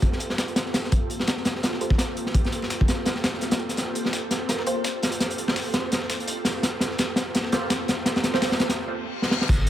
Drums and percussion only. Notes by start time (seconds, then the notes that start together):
0.02 kick, closed hi-hat
0.12 snare
0.20 closed hi-hat
0.30 snare
0.38 snare, closed hi-hat
0.48 closed hi-hat
0.56 snare, closed hi-hat
0.66 snare
0.74 snare, closed hi-hat, open hi-hat
0.84 snare
0.92 kick, closed hi-hat
1.10 closed hi-hat
1.20 snare
1.27 snare, closed hi-hat
1.37 snare
1.45 snare, closed hi-hat
1.55 snare
1.63 snare, closed hi-hat
1.73 snare
1.81 closed hi-hat
1.90 kick, snare
1.98 snare, closed hi-hat
2.17 closed hi-hat
2.26 snare
2.35 kick, closed hi-hat
2.45 snare, closed hi-hat
2.52 closed hi-hat
2.62 snare
2.70 snare, closed hi-hat
2.81 kick
2.88 snare, closed hi-hat
3.06 snare, closed hi-hat
3.15 snare
3.24 snare, closed hi-hat
3.34 snare
3.41 snare, closed hi-hat
3.51 snare, closed hi-hat
3.59 snare, closed hi-hat
3.69 snare, closed hi-hat
3.77 snare, closed hi-hat
3.95 closed hi-hat
4.05 snare
4.13 snare, closed hi-hat
4.31 snare, closed hi-hat
4.49 snare, closed hi-hat
4.59 snare
4.67 closed hi-hat
4.84 snare, closed hi-hat
5.03 snare, closed hi-hat
5.12 closed hi-hat
5.20 snare, closed hi-hat
5.30 closed hi-hat
5.38 closed hi-hat
5.48 snare
5.56 snare, closed hi-hat, open hi-hat
5.74 snare, closed hi-hat
5.92 snare, closed hi-hat
6.02 snare
6.10 snare, closed hi-hat
6.20 closed hi-hat
6.28 closed hi-hat
6.45 snare, closed hi-hat, open hi-hat
6.63 snare, closed hi-hat
6.80 snare, closed hi-hat
6.91 snare
6.98 snare, closed hi-hat
7.16 snare, closed hi-hat
7.35 snare, closed hi-hat
7.44 snare
7.52 snare, closed hi-hat
7.70 snare, closed hi-hat
7.88 snare, closed hi-hat
8.06 snare, closed hi-hat
8.16 snare, closed hi-hat
8.24 snare, closed hi-hat
8.34 snare
8.42 snare, closed hi-hat, open hi-hat
8.52 snare
8.60 snare, closed hi-hat
8.69 snare, closed hi-hat
9.22 snare
9.31 snare
9.41 snare
9.49 kick, closed hi-hat, crash